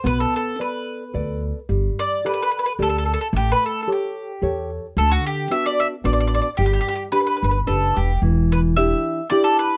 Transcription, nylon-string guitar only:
X:1
M:3/4
L:1/8
Q:"Swing" 1/4=110
K:G
V:1 name="Nylon-string guitar"
B,2 [ABd]2 [ABd]2 | G,2 [GAd]2 [GAd]2 | A,2 [GA^c]2 [GAc]2 | D,2 [B,DF]2 [B,DF]2 |
G,2 [DGB]2 [DGB]2 | [K:Em] E,2 [DEG]2 [DEG]2 |]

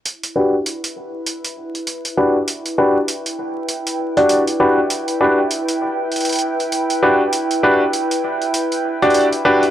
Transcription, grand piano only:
X:1
M:4/4
L:1/16
Q:"Swing 16ths" 1/4=99
K:Em
V:1 name="Grand piano"
z2 [DFGB] z8 z3 [DFGB] z | z2 [DFGB] z8 [DFGd]2 z [DFGB] z | z2 [DFGB] z8 z3 [DFGB] z | z2 [DFGB] z8 [DFGd]2 z [DFGB] z |]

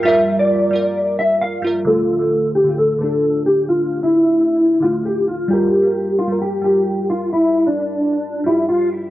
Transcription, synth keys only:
X:1
M:4/4
L:1/16
Q:1/4=132
K:Dm
V:1 name="Synth keys"
[G,FB]4- [G,FB] z [G,FB]6 z2 [G,FB]2 | [D,A,F]2 z [D,A,F]3 z [D,A,F]2 z [D,A,D]6 | z8 z2 [D,A,F]4- [D,A,F] z | [G,FB]2 z [G,FB]3 z [G,FB]2 z [G,FB]6 |
z8 z2 [G,FG]4- [G,FG] z |]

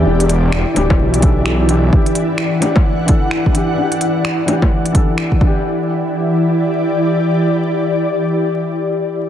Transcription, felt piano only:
X:1
M:4/4
L:1/8
Q:"Swing 16ths" 1/4=129
K:Em
V:1 name="Felt piano"
[E,DG]3 [E,DG]2 [E,DA]2 [E,DG] | [E,DG]3 [E,DG]2 [E,DA]2 [E,DG] | [E,DG]3 [E,DG]2 [E,DA]2 [E,DG]- | [E,DG]8- |
[E,DG]8 |]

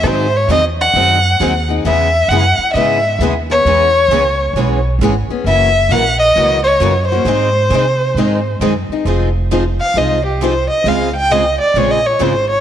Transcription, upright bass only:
X:1
M:4/4
L:1/8
Q:"Swing" 1/4=133
K:G#phr
V:1 name="Upright bass" clef=bass
G,,2 E,,2 F,,2 D,,2 | E,,2 F,, z G,,2 D,,2 | E,,2 C,,2 B,,,2 G,,, z | F,,,2 ^A,,,2 C,,2 F,,2 |
G,,2 ^B,,2 G,,2 F,, z | [K:Fm] F,,,4 C,,4 | D,,4 B,,,2 A,,,2 |]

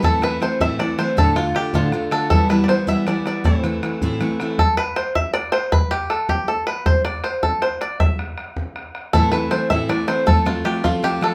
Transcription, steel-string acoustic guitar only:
X:1
M:6/8
L:1/8
Q:3/8=106
K:Am
V:1 name="Steel-string acoustic guitar"
[A,,E,A,CE] [E,A,CE] [E,A,CE] [A,,E,A,CE] [E,A,CE] [E,A,CE] | [D,,A,,D,A,DF] [D,A,DF] [D,A,DF] [D,,A,,D,A,DF] [D,A,DF] [D,A,DF] | [E,G,B,E] [E,G,B,E] [E,G,B,E] [E,G,B,E] [E,G,B,E] [E,G,B,E] | [A,,E,A,CE] [E,A,CE] [E,A,CE] [A,,E,A,CE] [E,A,CE] [E,A,CE] |
z6 | z6 | z6 | z6 |
[A,,E,A,CE] [E,A,CE] [E,A,CE] [A,,E,A,CE] [E,A,CE] [E,A,CE] | [F,A,CF] [F,A,CF] [F,A,CF] [F,A,CF] [F,A,CF] [F,A,CF] |]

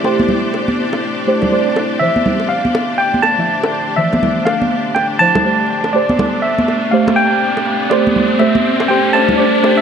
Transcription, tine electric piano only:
X:1
M:4/4
L:1/16
Q:"Swing 16ths" 1/4=122
K:Dm
V:1 name="Tine electric piano"
z16 | e4 f4 g2 a6 | e4 f4 g2 a6 | d4 e4 f2 g6 |
d4 e4 g2 a2 d3 e |]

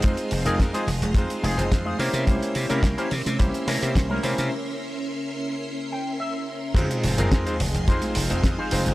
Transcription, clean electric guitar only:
X:1
M:4/4
L:1/16
Q:1/4=107
K:Fm
V:1 name="Clean electric guitar"
z3 [EFA] z [EFA] z4 [EFA]2 z [EFA] [D=EB]2- | [D=EB]2 z [DEB] z [DEB] z4 [DEB]2 z [DEB]3 | z8 z2 g2 =e4 | z3 [EFAc]3 z2 [EFAc]2 z3 [EFAc] z2 |]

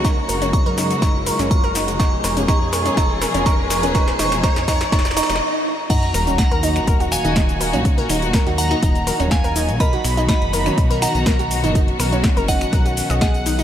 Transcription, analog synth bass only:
X:1
M:4/4
L:1/16
Q:1/4=123
K:Ebm
V:1 name="Analog synth bass" clef=bass
D,, z G,,,2 z G,,2 z G,,,2 z G,,,4 F,,,- | F,,, z F,,,2 z F,,2 z F,,,2 z F,,,4 E,,,- | E,,, z F,,,2 z F,,2 z F,,,2 z F,,, z4 | z2 E,,,2 z E,,2 z E,,,2 z E,,,4 D,,- |
D,, z E,,,2 z E,,2 z E,,,2 z E,,,4 C,,- | C,, z =B,,,2 z ^F,,,2 z B,,,2 z B,,,4 F,,,- | ^F,,, z =B,,,2 z F,,,2 z B,,,2 z B,,,4 F,,, |]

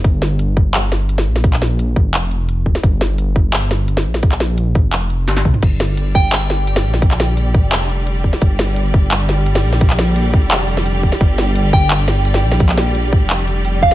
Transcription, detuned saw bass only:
X:1
M:4/4
L:1/16
Q:1/4=172
K:Gm
V:1 name="Detuned saw bass" clef=bass
G,,,12- G,,,2 B,,,2- | B,,,6- B,,, F,,,8 z | G,,,12- G,,,2 B,,,2- | B,,,6- B,,, F,,,4- F,,, G,,,2 C,, z |
G,,,12- G,,,2 B,,,2- | B,,,6- B,,, F,,,8 z | G,,,12- G,,,2 B,,,2- | B,,,6- B,,, F,,,8 z |
G,,,12- G,,,2 B,,,2- | B,,,6- B,,, F,,,8 z |]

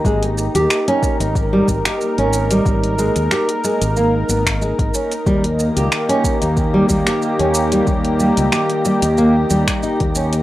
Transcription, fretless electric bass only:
X:1
M:4/4
L:1/16
Q:"Swing 16ths" 1/4=92
K:D#phr
V:1 name="Fretless electric bass" clef=bass
G,,,3 D,, z3 G,,,3 G,,, z2 G,,,3 | G,,,3 D,, z3 G,,,3 G,,,3 G,,, z2 | D,,3 C,, z3 D,,3 D,, z2 D,,3 | D,,3 C,, z3 D,,3 D,, z2 D,,3 |]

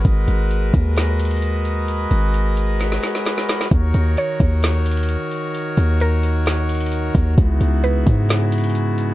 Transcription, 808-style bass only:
X:1
M:4/4
L:1/16
Q:1/4=131
K:D#phr
V:1 name="808-style bass" clef=bass
G,,,2 G,,,4 D,,8- D,,2- | D,,2 G,,,8 z6 | D,,2 D,,2 z2 D,,6- D,, z3 | z2 D,,12 D,,2 |
C,,2 C,,4 G,,8- G,,2 |]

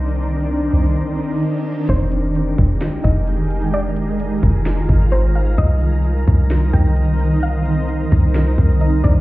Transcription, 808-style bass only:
X:1
M:4/4
L:1/8
Q:1/4=130
K:Fdor
V:1 name="808-style bass" clef=bass
C,,3 C,, z4 | F,,,3 F,,, z F,,,3- | F,,,3 F,,,2 A,,,3 | C,,3 C,,2 C,,3- |
C,,3 C,,2 C,,2 C,, |]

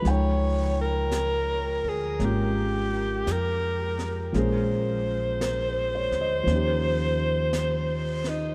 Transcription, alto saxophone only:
X:1
M:4/4
L:1/16
Q:"Swing" 1/4=56
K:Dblyd
V:1 name="Alto saxophone"
d2 B4 A2 G4 B3 z | c12- c2 E2 |]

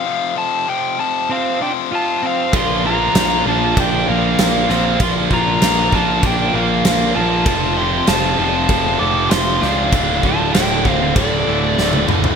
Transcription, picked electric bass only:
X:1
M:4/4
L:1/8
Q:1/4=97
K:F
V:1 name="Picked electric bass" clef=bass
z8 | B,,,2 B,,, B,,, B,,, B,,, B,,, B,,, | B,,, B,,, B,,, B,,, B,,, B,,, B,,, B,,, | F,,,2 F,,, F,,, F,,, F,,, F,,, ^C,, |
D,,, D,,, D,,, D,,, D,,, D,,, D,,, D,,, |]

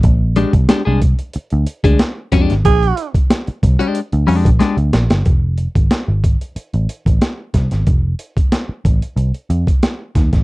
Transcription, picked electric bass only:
X:1
M:4/4
L:1/16
Q:1/4=92
K:Bb
V:1 name="Picked electric bass" clef=bass
B,,,3 C,, z C,,2 z2 D,, z D,, z2 F,, _A,,, | B,,,2 z4 C,, z2 D,, F,, B,,, z D,, B,,, G,,, | F,,,3 ^G,,, z G,,,2 z2 A,,, z A,,, z2 C,, G,,, | F,,,2 z4 A,,, z C,, z F,, z3 E,, A,,, |]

